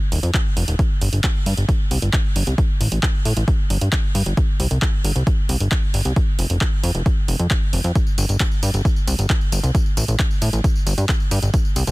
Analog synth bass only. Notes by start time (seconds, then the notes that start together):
0.12 D#1
0.23 F2
0.57 F1
0.68 D#1
1.01 G1
1.13 G1
1.46 G2
1.57 G1
1.91 C2
2.02 G1
2.36 G1
2.47 C2
2.81 A1
2.92 A1
3.25 A2
3.37 A1
3.70 G1
3.81 G2
4.15 G2
4.26 G1
4.60 C2
4.71 C2
5.04 G1
5.16 C2
5.49 C2
5.60 G1
5.94 G1
6.05 C2
6.39 F1
6.50 F1
6.83 F2
6.95 F1
7.28 F1
7.39 F2
7.73 F1
7.84 F2
8.18 G1
8.29 G1
8.63 G2
8.74 G1
9.07 C2
9.19 G1
9.52 G1
9.63 C2
9.97 A1
10.08 A1
10.42 A2
10.53 A1
10.86 G1
10.98 G2
11.31 G2
11.43 G1
11.76 C2
11.87 C2